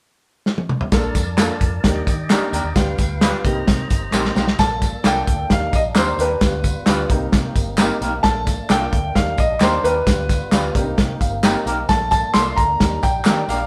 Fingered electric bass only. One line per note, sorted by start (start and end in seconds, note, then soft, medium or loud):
0.92 1.09 A#1 medium
1.15 1.49 F2 medium
1.61 1.78 F2 medium
1.84 2.01 D#2 medium
2.07 2.32 D#3 medium
2.52 2.61 D#2 medium
2.64 2.72 D#2 medium
2.76 2.93 D2 loud
2.99 3.32 D2 medium
3.44 3.61 C2 medium
3.68 3.84 C3 medium
3.91 4.07 G1 medium
4.12 4.29 A#1 medium
4.36 4.53 B1 medium
4.59 4.92 A#1 loud
5.05 5.22 C2 medium
5.27 5.44 D2 medium
5.50 5.67 D#2 medium
5.73 5.90 A#1 medium
5.95 6.12 D#2 medium
6.18 6.35 D#2 medium
6.41 6.75 D2 medium
6.87 7.04 D2 medium
7.10 7.27 C2 medium
7.33 7.50 C3 medium
7.56 7.89 G1 medium
8.01 8.18 B1 medium
8.24 8.58 A#1 medium
8.69 8.86 C2 medium
8.93 9.10 D2 medium
9.15 9.32 D#2 loud
9.38 9.55 A#1 medium
9.60 9.78 D#2 medium
9.84 10.01 D#2 medium
10.06 10.40 D2 loud
10.52 10.69 D2 medium
10.75 10.92 C2 medium
10.98 11.15 C3 medium
11.21 11.54 G1 medium
11.66 11.83 B1 medium
11.89 12.23 A#1 medium
12.34 12.51 C2 medium
12.57 12.74 D2 medium
12.81 12.98 D#2 medium
13.03 13.20 A#1 medium
13.25 13.42 D#3 medium
13.48 13.65 A#1 medium